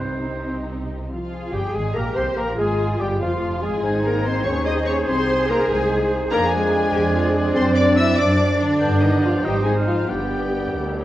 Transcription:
0.00 C2 C3 C4 D#4 G4 C5
1.10 F3 F4 F5
1.33 G#4
1.52 G1 G3 G4 G5
1.73 G#1 G#3 G#4 G#5
1.94 A#1 A#3 G4 A#4 A#5
2.15 C2 C4 C5 C6
2.35 A#1 A#3 A#4 A#5
2.57 G#1 G#3 F4 G#4 G#5
2.99 G1 G3 G4 G5
3.20 F1 F3 F4 F5
3.61 G#1 G#3 G#4 G#5
3.82 G#1 C4 D#4 C5 G#6
4.04 A#3 A#4 A#5
4.24 C4 C5 C6
4.45 D#2 C#4 G#4 C#5 C#6
4.65 D#4 D#5 D#6
4.86 C#4 C#5 C#6
5.07 C2 C4 C5 C6
5.49 A#3 A#4 A#5
5.69 C2 G#3 G#4 G#5
6.31 F2 A#3 C4 D4 A#4 D5 A#5 G#6
6.51 G#4 G#5
6.55 G#3
6.93 F2 G4
7.14 F4
7.35 C4
7.54 F#2 C4 C5 C6 A6
7.76 D4 D5 D6
7.97 E4 E5 E6
8.17 F#2 D4 D5 D6
8.59 D3 D4 D5
8.79 G2 B3 D4 D5 G6
9.00 D#3 D#4 D#5
9.23 F3 F4 F5
9.43 G#1 G3 C4 D#4 G4 C5 G5 D#6
9.64 G#3 G#4 G#5
9.76 F6
9.86 F3 F4 F5
10.08 G1 G3 B3 D4 G4 D5 G5 G6
10.73 D2

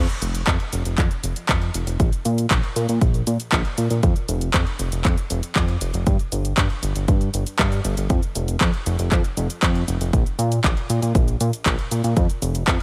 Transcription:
0.09 closed hi-hat, cabasa
0.22 F1, closed hi-hat, cabasa
0.35 closed hi-hat, cabasa
0.47 F2, kick, clap, closed hi-hat, cabasa
0.60 closed hi-hat
0.73 F1, closed hi-hat, cabasa
0.85 F1, closed hi-hat, cabasa
0.98 F2, kick, clap, closed hi-hat, cabasa
1.11 closed hi-hat, cabasa
1.23 F1, closed hi-hat, cabasa
1.36 closed hi-hat, cabasa
1.49 F2, kick, clap, closed hi-hat, cabasa
1.62 closed hi-hat
1.74 F1, closed hi-hat, cabasa
1.87 F1, closed hi-hat, cabasa
2.00 A#1, kick, closed hi-hat, cabasa
2.13 closed hi-hat, cabasa
2.25 A#2, closed hi-hat, cabasa
2.38 closed hi-hat, cabasa
2.51 A#1, kick, clap, closed hi-hat, cabasa
2.63 closed hi-hat
2.76 A#2, closed hi-hat, cabasa
2.89 A#2, closed hi-hat, cabasa
3.01 A#1, kick, closed hi-hat, cabasa
3.14 closed hi-hat, cabasa
3.27 A#2, closed hi-hat, cabasa
3.40 closed hi-hat, cabasa
3.52 A#1, kick, clap, closed hi-hat, cabasa
3.65 closed hi-hat
3.78 A#2, closed hi-hat, cabasa
3.90 A#2, closed hi-hat, cabasa
4.03 F2, kick, closed hi-hat, cabasa
4.16 closed hi-hat, cabasa
4.29 F1, closed hi-hat, cabasa
4.41 closed hi-hat, cabasa
4.54 F2, kick, clap, closed hi-hat, cabasa
4.67 closed hi-hat
4.79 F1, closed hi-hat, cabasa
4.92 F1, closed hi-hat, cabasa
5.05 F2, kick, clap, closed hi-hat, cabasa
5.18 closed hi-hat, cabasa
5.30 F1, closed hi-hat, cabasa
5.43 closed hi-hat, cabasa
5.56 F2, kick, clap, closed hi-hat, cabasa
5.68 closed hi-hat
5.81 F1, closed hi-hat, cabasa
5.94 F1, closed hi-hat, cabasa
6.07 G2, kick, closed hi-hat, cabasa
6.19 closed hi-hat, cabasa
6.32 G1, closed hi-hat, cabasa
6.45 closed hi-hat, cabasa
6.57 G2, kick, clap, closed hi-hat, cabasa
6.70 closed hi-hat
6.83 G1, closed hi-hat, cabasa
6.96 G1, closed hi-hat, cabasa
7.08 G2, kick, closed hi-hat, cabasa
7.21 closed hi-hat, cabasa
7.34 G1, closed hi-hat, cabasa
7.46 closed hi-hat, cabasa
7.59 G2, kick, clap, closed hi-hat, cabasa
7.72 closed hi-hat, cabasa
7.85 G1, closed hi-hat, cabasa
7.97 G1, closed hi-hat, cabasa
8.10 F2, kick, closed hi-hat, cabasa
8.23 closed hi-hat, cabasa
8.35 F1, closed hi-hat, cabasa
8.48 closed hi-hat, cabasa
8.61 F2, kick, clap, closed hi-hat, cabasa
8.74 closed hi-hat
8.86 F1, closed hi-hat, cabasa
8.99 F1, closed hi-hat, cabasa
9.12 F2, kick, clap, closed hi-hat, cabasa
9.24 closed hi-hat, cabasa
9.37 F1, closed hi-hat, cabasa
9.50 closed hi-hat, cabasa
9.62 F2, kick, clap, closed hi-hat, cabasa
9.75 closed hi-hat
9.88 F1, closed hi-hat, cabasa
10.01 F1, closed hi-hat, cabasa
10.13 A#1, kick, closed hi-hat, cabasa
10.26 closed hi-hat, cabasa
10.39 A#2, closed hi-hat, cabasa
10.52 closed hi-hat, cabasa
10.64 A#1, kick, clap, closed hi-hat, cabasa
10.77 closed hi-hat
10.90 A#2, closed hi-hat, cabasa
11.02 A#2, closed hi-hat, cabasa
11.15 A#1, kick, closed hi-hat, cabasa
11.28 closed hi-hat, cabasa
11.41 A#2, closed hi-hat, cabasa
11.53 closed hi-hat, cabasa
11.66 A#1, kick, clap, closed hi-hat, cabasa
11.79 closed hi-hat
11.91 A#2, closed hi-hat, cabasa
12.04 A#2, closed hi-hat, cabasa
12.17 F2, kick, closed hi-hat, cabasa
12.30 closed hi-hat, cabasa
12.42 F1, closed hi-hat, cabasa
12.55 closed hi-hat, cabasa
12.68 F2, kick, clap, closed hi-hat, cabasa

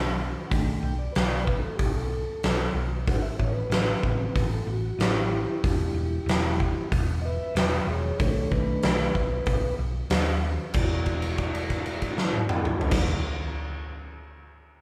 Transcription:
Already playing: B1
0.47 B1 D#3 A3 F#5
0.51 D4 G5, kick, open hi-hat
0.80 B1 G5
0.98 D5
1.12 B1 B4, snare, open hi-hat
1.27 D5
1.44 B4, kick
1.59 A4
1.77 B1 G4, kick, open hi-hat
1.91 A4
2.10 A4
2.43 B1, snare, open hi-hat
2.74 B1
3.07 A1 F#5, kick, open hi-hat
3.22 E5
3.38 A1 C#5, kick
3.49 A#4
3.53 B4
3.70 A1, snare, open hi-hat
4.01 A1 C#3 G3 C4, kick
4.36 A1, kick, open hi-hat
4.53 A4
4.67 A1 F#4
4.99 A1 E4 G4, snare, open hi-hat
5.64 E1 G3 G#3 D4, kick, open hi-hat
5.94 E1
6.26 E1, snare, open hi-hat
6.60 kick
6.92 E1, kick, open hi-hat
7.22 B4 D#5 E5
7.55 E1 B4, snare, open hi-hat
7.60 E5
7.87 E1 G#4
7.92 C#5
8.19 B1 D#3 A3 D4 A4 C#5, kick, open hi-hat
8.51 B1 B4, kick
8.82 B1, snare, open hi-hat
9.15 B1, kick
9.46 B1, kick, open hi-hat
9.79 B1
10.10 D#2, snare, open hi-hat
10.74 E1 G#3 E4 F#4 D5, kick, crash
11.06 kick, crash
11.22 crash
11.38 kick, crash
11.55 crash
11.70 kick, crash
11.86 crash
12.02 kick, crash
12.18 snare
12.33 high tom
12.49 mid tom
12.65 mid tom
12.81 floor tom
12.91 E1 G#3 E4 F#4 D5, kick, snare, crash

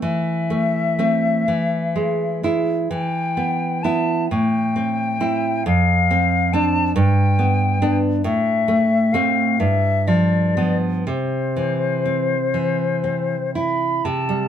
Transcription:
0.02 E3 E5
0.50 A3
0.99 A3 C4
1.48 E3
1.96 G#3
2.43 G#3 E4
2.91 E3 G5
3.37 B3
3.83 B3 E4 A5
4.30 A2 G5
4.76 C4
5.20 C4 E4
5.66 F2 F5
6.11 C4
6.53 C4 D4 A5
6.96 G2 G5
7.39 B3
7.82 B3 D4
8.24 A2 E5
8.68 A3
9.13 A3 C4 F5
9.60 G2 E5
10.07 F3 D5
10.57 F3 B3
11.07 C3 C5
11.56 E3
12.06 C4
12.54 E3
13.04 C4
13.55 E4 B5
14.05 C3 A5
14.29 G3

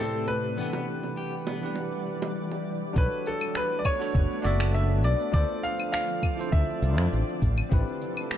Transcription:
Already playing: A2 C3 A3 C4 E4 G4 A4 B4 D5
0.00 C4
0.28 B4, high bongo
0.57 E3 G3 B3 D4 G4 D5 F#5
0.61 B4
0.73 high bongo
1.03 high bongo
1.17 G4
1.47 B3, high bongo
1.62 E3 D4 G4 B4 F#5
1.76 high bongo
2.22 high bongo
2.51 high bongo
2.93 B1 A3 B3 D4 F#4 A4, kick, cabasa
2.97 B4 C#5
3.12 cabasa
3.26 A4, cabasa
3.41 cabasa, claves
3.55 B4, finger snap, cabasa
3.72 cabasa
3.79 D5
3.85 C#5, kick, cabasa, claves
4.00 D4 F#4 A4 C#5, cabasa
4.15 F#1, kick, cabasa
4.31 cabasa
4.42 F#1 D4 F#4 A4 D5, cabasa
4.46 E5
4.60 finger snap, cabasa
4.74 E5, cabasa
4.90 cabasa
5.04 B1 D5, cabasa
5.20 cabasa
5.32 D2 D3 F3 C4 D4 F4 A4 C5 D5, kick, cabasa
5.49 cabasa
5.63 F5, cabasa
5.80 cabasa, claves
5.92 F5, finger snap, cabasa
6.10 cabasa
6.23 kick, cabasa, claves
6.37 E4 F4 A4, cabasa
6.41 C5
6.52 D2 E5, kick, cabasa
6.69 cabasa
6.82 C2, cabasa
6.98 F2, finger snap, cabasa
7.13 A1, cabasa
7.28 cabasa
7.42 A1 C3 A3 G4 A4, kick, cabasa
7.58 cabasa, claves
7.69 A1 C4 E4 G4 B4, kick, cabasa
7.88 cabasa
8.02 cabasa
8.17 cabasa, claves
8.31 finger snap, cabasa

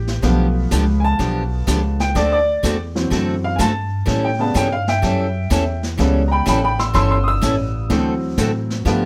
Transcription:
Already playing: A1 G4
0.07 snare
0.22 B1 D3 F3 A3 B3 D4 G4, brush sweep, kick, snare
0.71 C#2 D3 F3 B3 D4 G4, kick, snare, hi-hat pedal
1.00 G#5
1.04 A5
1.19 B1 D3 F3 B3 D4 G4, brush sweep, kick, snare
1.67 C#2 D3 F3 B3 D4 G4, kick, snare, hi-hat pedal
2.00 G5, snare
2.15 D2 D3 A3 C4 F#4 A4 D5, brush sweep, kick, snare
2.32 D5
2.63 E2 D3 A3 C4 F#4 A4, kick, snare, hi-hat pedal
2.95 E3 F#3 C4, snare
3.10 F#2 D3 A3 C4 F#4 A4, brush sweep, kick, snare
3.44 F5
3.56 G2 D3 A3 C4 F#4 A4 G#5, kick, snare, hi-hat pedal
3.61 A5
4.06 A2 E3 G3 C#4 E4 A4, brush sweep, kick, snare
4.25 G5
4.39 C#3 G3 B3 A5
4.54 G2 E3 G3 C#4 E4 A4 G5, kick, snare, hi-hat pedal
4.72 F5
4.88 E5 G5, snare
5.02 F#2 E3 G3 C#4 E4 A4, brush sweep, kick, snare
5.50 E2 E3 G3 C#4 E4 A4, kick, snare, hi-hat pedal
5.83 snare
5.98 C#2 C#3 E3 G3 B3 C#4 E4 A4, brush sweep, kick, snare
6.28 G5 A#5
6.32 B5
6.46 A1 E3 G3 C#4 E4 A4 G5 B5, kick, snare, hi-hat pedal
6.64 G5 B5
6.79 C6 E6, snare
6.94 G1 E3 G3 C#4 E4 A4 C6 E6, brush sweep, kick, snare
7.11 C6 E6
7.24 D#6
7.28 E6
7.42 A1 E3 G3 C#4 E4 A4, kick, snare, hi-hat pedal
7.89 D2 D3 E3 F#3 A3 C4 F#4 A4, brush sweep, kick, snare
8.38 A2 D3 A3 C4 F#4 A4, kick, snare, hi-hat pedal
8.70 snare
8.85 G2 D3 F3 A3 B3 D4 G4, brush sweep, kick, snare

